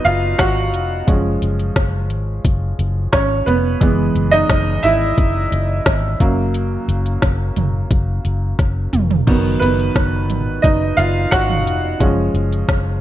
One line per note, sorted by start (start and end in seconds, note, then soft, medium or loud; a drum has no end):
0.00 1.04 F#3 soft
0.00 1.09 B3 medium
0.00 1.10 D#4 medium
0.00 1.10 B4 medium
0.00 1.09 D#5 medium
0.05 0.33 F#1 medium
0.05 0.37 F4 medium
0.05 0.37 F5 medium
0.05 closed hi-hat medium
0.39 0.73 G#1 medium
0.39 0.87 F#4 medium
0.39 0.87 F#5 medium
0.39 kick medium
0.39 snare medium
0.39 closed hi-hat medium
0.73 1.01 F1 medium
0.73 closed hi-hat medium
1.07 1.36 F#1 medium
1.07 3.77 F3 soft
1.07 3.77 G#3 soft
1.07 3.12 C#4 soft
1.07 kick loud
1.07 closed hi-hat medium
1.42 1.70 F#1 medium
1.42 closed hi-hat medium
1.59 closed hi-hat soft
1.76 2.10 F#1 medium
1.76 kick loud
1.76 snare medium
1.76 closed hi-hat medium
2.10 2.39 G#1 medium
2.10 closed hi-hat medium
2.45 2.73 F#1 medium
2.45 kick medium
2.45 closed hi-hat medium
2.79 3.07 F#1 loud
2.79 closed hi-hat medium
3.13 3.41 G#1 medium
3.13 3.21 C#4 medium
3.13 3.20 C#5 medium
3.13 kick medium
3.13 snare medium
3.13 closed hi-hat medium
3.46 3.75 F1 medium
3.46 3.80 B3 medium
3.46 4.28 B4 medium
3.46 closed hi-hat medium
3.81 4.09 F#1 medium
3.81 4.26 E3 soft
3.81 4.27 G#3 soft
3.81 4.27 B3 soft
3.81 kick loud
3.81 closed hi-hat medium
4.15 4.43 F#1 medium
4.15 closed hi-hat medium
4.31 4.81 D#4 medium
4.31 4.85 D#5 loud
4.31 closed hi-hat soft
4.50 4.78 F#1 medium
4.50 kick loud
4.50 snare medium
4.50 closed hi-hat medium
4.83 5.12 G#1 medium
4.83 6.17 E4 medium
4.83 6.16 E5 loud
4.83 closed hi-hat medium
5.18 5.46 F#1 medium
5.18 kick loud
5.18 closed hi-hat medium
5.52 5.80 F#1 medium
5.52 closed hi-hat medium
5.86 6.14 G#1 medium
5.86 kick loud
5.86 snare loud
5.86 closed hi-hat medium
6.20 6.76 F#1 medium
6.20 8.89 C#3 soft
6.20 8.90 F#3 soft
6.20 8.90 A#3 medium
6.20 kick medium
6.20 closed hi-hat medium
6.54 closed hi-hat medium
6.88 7.16 F#1 medium
6.88 closed hi-hat medium
7.06 closed hi-hat soft
7.22 7.51 F#1 medium
7.22 kick loud
7.22 snare medium
7.22 closed hi-hat medium
7.56 7.85 F#1 medium
7.56 closed hi-hat medium
7.56 floor tom medium
7.91 8.19 F#1 medium
7.91 kick loud
7.91 closed hi-hat medium
8.25 8.53 F#1 medium
8.25 closed hi-hat medium
8.59 8.87 F#1 medium
8.59 kick medium
8.59 snare soft
8.59 closed hi-hat medium
8.93 9.21 F1 medium
8.93 closed hi-hat medium
8.93 mid tom medium
9.11 floor tom medium
9.27 9.56 F#1 loud
9.27 11.96 D#3 medium
9.27 11.97 F#3 soft
9.27 9.60 B3 medium
9.27 kick loud
9.27 crash medium
9.60 9.90 F#1 medium
9.60 10.60 B3 medium
9.60 10.66 B4 medium
9.60 closed hi-hat medium
9.79 closed hi-hat soft
9.96 10.30 F#1 medium
9.96 kick loud
9.96 snare medium
9.96 closed hi-hat medium
10.30 10.58 G#1 medium
10.30 closed hi-hat medium
10.30 floor tom medium
10.62 10.92 F#1 medium
10.62 10.96 D#4 medium
10.62 10.98 D#5 medium
10.62 kick loud
10.62 closed hi-hat medium
10.97 11.26 F#1 medium
10.97 11.06 F4 medium
10.97 11.05 F5 medium
10.97 closed hi-hat medium
11.31 11.66 G#1 medium
11.31 11.80 F#4 medium
11.31 11.79 F#5 medium
11.31 kick medium
11.31 snare medium
11.31 closed hi-hat medium
11.50 floor tom medium
11.66 11.94 F1 medium
11.66 closed hi-hat medium
12.00 12.29 F#1 medium
12.00 12.46 F3 soft
12.00 12.46 G#3 soft
12.00 12.46 C#4 soft
12.00 kick loud
12.00 closed hi-hat medium
12.34 12.62 F#1 medium
12.34 closed hi-hat medium
12.52 closed hi-hat soft
12.68 13.01 F#1 medium
12.68 kick loud
12.68 snare medium
12.68 closed hi-hat medium